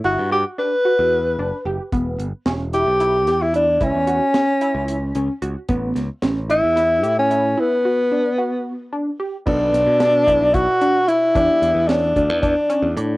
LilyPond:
<<
  \new Staff \with { instrumentName = "Synth arpeggio sound" } { \time 7/8 \key e \dorian \tempo 4 = 111 e'8 fis'8 d'8 fis'4 d'8 g'8 | b4 cis'8 e'8 e'8 g'8 e'8 | e'8 fis'8 cis'8 e'4 cis'8 fis'8 | b4 cis'8 e'8 e'8 g'8 e'8 |
e'8 fis'8 d'8 fis'4 d'8 g'8 | b4 d'8 e'8 e'8 d'8 e'8 | d'4 cis'8 d'8 d'8 cis'8 d'8 | }
  \new Staff \with { instrumentName = "Tenor saxophone" } { \time 7/8 \key e \dorian fis'8 g'8 b'2 r8 | r4. g'4~ g'16 e'16 d'8 | cis'2. r8 | r4. e'4~ e'16 cis'8. |
b2~ b8 r4 | d'2 fis'4 e'8~ | e'4 d'4 d'4 r8 | }
  \new Staff \with { instrumentName = "Grand piano" } { \time 7/8 \key e \dorian r2. r8 | r2. r8 | r2. r8 | r2. r8 |
r2. r8 | <b, b d' a'>2.~ <b, b d' a'>8 | <e b d' g'>2.~ <e b d' g'>8 | }
  \new Staff \with { instrumentName = "Picked electric bass" } { \clef bass \time 7/8 \key e \dorian g,,16 g,8 r4 e,8. fis,,16 r16 fis,,16 r16 | e,,8 g,,16 r16 e,,8. b,,8. e,4 | cis,16 e,8 r4 cis,8. cis,16 r16 cis,16 r16 | a,,8 cis,16 r16 a,,8. e,8. a,4 |
r2. r8 | b,,8 b,,16 b,8. b,,16 b,,8 r4 r16 | e,16 r16 e,16 e,8. d,16 e,8 r8 e,16 a,8 | }
  \new DrumStaff \with { instrumentName = "Drums" } \drummode { \time 7/8 r4 r4 r4. | <hh bd>8 hh8 <hh sn>8 hh8 hh8 <hh sn>8 hh8 | <hh bd>8 hh8 <hh sn>8 hh8 hh8 hh8 hh8 | <hh bd>8 <hh sn>8 <hh sn>8 hh8 <hh sn>8 hh8 hh8 |
r4 r4 r4. | <cymc bd>8 <hh sn>8 <hh sn>8 <hh bd>8 <hh bd>8 hh8 hh8 | <hh bd>8 hh8 <hh sn>8 <hh bd>8 <hh bd>8 hh8 hh8 | }
>>